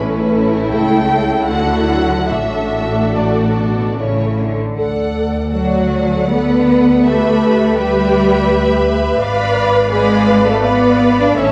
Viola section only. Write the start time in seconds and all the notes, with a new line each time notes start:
Already playing: A3 C#4
0.72 E4
1.10 E4
1.49 A3
1.89 F#3
2.30 A3 D4
3.97 A3 C#4
4.77 A4
5.53 A4
7.06 G4 B4
7.79 G4 B4
9.22 B4 D5
9.91 B4 D5
10.62 B4 D5
11.38 A4 E5